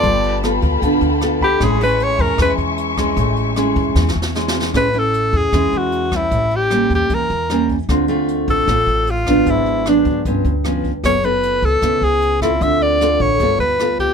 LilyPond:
<<
  \new Staff \with { instrumentName = "Grand piano" } { \time 4/4 \key a \major \tempo 4 = 153 <a'' c'''>8. r2 r8. b''8~ | b''8 r2. r8 | r1 | r1 |
r1 | r1 | r1 | r1 |
r1 | }
  \new Staff \with { instrumentName = "String section" } { \time 4/4 \key a \major << { <f'' g'' b''>1 | <e'' gis'' cis'''>1~ | <e'' gis'' cis'''>1 | r1 |
r1 | r1 | r1 | r1 |
r1 | } \\ { a''1~ | a''1~ | a''1 | r1 |
r1 | r1 | r1 | r1 |
r1 | } >> }
  \new Staff \with { instrumentName = "Alto saxophone" } { \time 4/4 \key a \major d''4 r2 r8 g'8 | gis'8 b'8 cis''8 bes'8 b'8 r4. | r1 | b'8 a'4 gis'4 fis'4 e'8~ |
e'8 g'4 g'8 bes'4. r8 | r4. a'4. f'4 | e'4 d'4 r2 | cis''8 b'4 a'4 gis'4 e'8 |
e''8 d''4 cis''4 b'4 g'8 | }
  \new Staff \with { instrumentName = "Nylon-string guitar" } { \time 4/4 \key a \major << { <b f' a'>4 <b f' a'>4 <b f' a'>8 r8 <b f' a'>8 r8 | <gis cis' e'>8 <gis cis' e'>4. <gis cis' e'>4. <gis cis' e'>8~ | <gis cis' e'>4 <gis cis' e'>4. r8 <gis cis' e'>4 | <gis cis' e'>8 <cis' e'>4. <gis cis' e'>4. <g cis'>8~ |
<g cis'>4 <g bes cis'>4. r8 <g bes cis'>8 r8 | <a c' f'>8 <a c' f'>4. <a c' f'>4 r8 <fis b d'>8~ | <fis b d'>4 <fis b d'>4 <f b cis'>8 r8 <f b cis'>8 r8 | <b e' a'>8 <b e' a'>4. <b e'>4. <c' f' a'>8~ |
<c' f' a'>4 <c' f' a'>8 r8 <b f' a'>4 <b f' a'>4 | } \\ { g2 d2 | a,2 e2 | a,2 e2 | a,2 e2 |
a,2 e2 | d2 a,2 | gis,2 g,2 | fis2 cis2 |
d2 g2 | } >> }
  \new Staff \with { instrumentName = "Upright bass" } { \clef bass \time 4/4 \key a \major g,,4. d,8 d,8 d,4. | a,,4. e,8 e,8 e,4. | a,,4. e,8 e,8 e,4. | a,,4. e,8 e,8 e,4. |
a,,4. e,8 e,8 e,4. | d,4. a,,8 a,,8 a,,4. | gis,,4. d,8 g,,8 d,4. | fis,,4. cis,8 cis,8 cis,4. |
d,4. a,,8 g,,8 d,4. | }
  \new DrumStaff \with { instrumentName = "Drums" } \drummode { \time 4/4 <hh bd>8 hh8 <hh ss>8 <hh bd>8 <hh bd>8 hh8 <hh ss>8 <hh bd>8 | <hh bd ss>8 hh8 hh8 <hh bd>8 <hh bd ss>8 hh8 hh8 <hh bd ss>8 | <hh bd>8 hh8 <hh ss>8 <hh bd>8 \tuplet 3/2 { <bd sn>8 sn8 sn8 sn8 sn8 sn8 } | <hh bd ss>8 hh8 hh8 <hh bd>8 <hh bd ss>8 hh8 hh8 <hh bd ss>8 |
<hh bd>8 hh8 <hh ss>8 <hh bd>8 <hh bd>8 hh8 <hh ss>8 <hh bd>8 | <hh bd ss>8 hh8 hh8 <hh bd>8 <hh bd ss>8 hh8 hh8 <hh bd ss>8 | <hh bd>8 hh8 <hh ss>8 <hh bd>8 <hh bd>8 hh8 <hh ss>8 <hh bd>8 | <hh bd ss>8 hh8 hh8 <hh bd>8 <hh bd ss>8 hh8 hh8 <hh bd ss>8 |
<hh bd>8 hh8 <hh ss>8 <hh bd>8 <hh bd>8 hh8 <hh ss>8 <hh bd>8 | }
>>